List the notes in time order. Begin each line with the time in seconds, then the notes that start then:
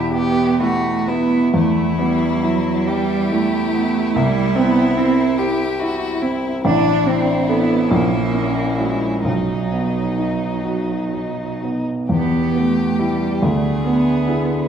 Already playing: E2 B2 E4 G4 E5
0.12 B3 G4
0.60 A3 E4 F#4
1.07 B3 E4
1.54 E2 A3 E4
1.98 G3 B3
2.43 F#3 E4
2.86 G3 G4
3.31 A3 E4
3.74 B3
4.15 C2 G3 E4
4.56 B3 C4
4.97 C4 E4
5.39 G4
5.80 E4 F#4
6.22 C4 E4
6.64 A1 D4 E4
7.06 C4
7.49 B3 E4 A4
7.89 A#1 A#3 C#4
8.33 C#4
8.78 G#3 E4 F#4
9.25 B1 F#3 D#4
9.72 B3
10.18 D#4
10.64 F#4
11.14 D#4
11.63 B3
12.09 E2 G4
12.13 B3
12.55 A3 B3
12.99 G3 E4 G4
13.43 D2 A3 D4 G#4
13.86 B3
14.27 E4 G#4